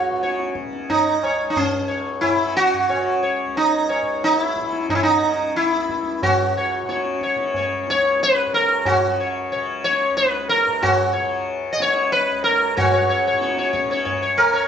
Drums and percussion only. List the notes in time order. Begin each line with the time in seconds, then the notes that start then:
0.24 tabla te
0.40 tabla te
0.55 tabla ke
0.73 tabla te
0.90 tabla tin, tabla ge
1.23 tabla na
1.56 tabla tin, tabla ge
2.23 tabla na, tabla ge
2.57 tabla te
2.74 tabla ge
2.90 tabla na
3.56 tabla tin
3.90 tabla na
4.23 tabla te
4.40 tabla te
4.56 tabla ke
4.73 tabla te
4.89 tabla na, tabla ge
5.22 tabla te
5.56 tabla te
5.73 tabla te
5.89 tabla ke
6.05 tabla te
6.23 tabla na, tabla ge
6.89 tabla te
7.05 tabla te
7.21 tabla ke
7.38 tabla te
7.54 tabla tin, tabla ge
7.87 tabla te
8.20 tabla te
8.53 tabla te
8.85 tabla na, tabla ge
9.85 tabla te
10.17 tabla te
10.50 tabla te
10.83 tabla na, tabla ge
11.80 tabla te
12.12 tabla te
12.45 tabla te
12.78 tabla na, tabla ge
13.41 tabla te
13.57 tabla te
13.74 tabla ke
13.90 tabla te
14.06 tabla tin, tabla ge
14.38 tabla na